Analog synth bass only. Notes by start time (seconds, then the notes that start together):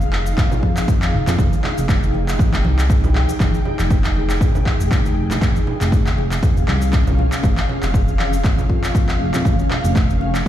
Already playing: F1
0.63 F2
1.14 F1
1.27 F2
1.39 F1
1.78 F1
2.53 F1
2.65 C2
3.40 F1
3.79 F1
4.80 F1
5.42 F1
5.81 F1
6.56 F1
6.68 C2
7.43 F1
7.83 F1
8.70 F2
9.20 F1
9.34 F2
9.45 F1
9.84 F1